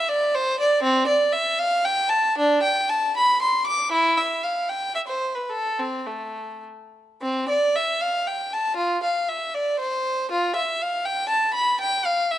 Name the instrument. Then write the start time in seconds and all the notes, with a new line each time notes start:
violin
Already playing: E5
0.09 D5
0.35 C5
0.60 D5
0.83 C4
1.08 D5
1.33 E5
1.59 F5
1.85 G5
2.09 A5
2.38 D4
2.63 G5
2.89 A5
3.17 B5
3.42 C6
3.67 D6
3.92 E4
4.17 E5
4.43 F5
4.69 G5
4.95 E5
5.08 C5
5.35 B4
5.49 A4
5.79 C4
6.07 A3
7.22 C4
7.49 D5
7.76 E5
8.01 F5
8.27 G5
8.53 A5
8.77 F4
9.04 F5
9.29 E5
9.54 D5
9.80 C5
10.32 F4
10.56 E5
10.82 F5
11.05 G5
11.29 A5
11.54 B5
11.81 G5
12.05 F5
12.31 E5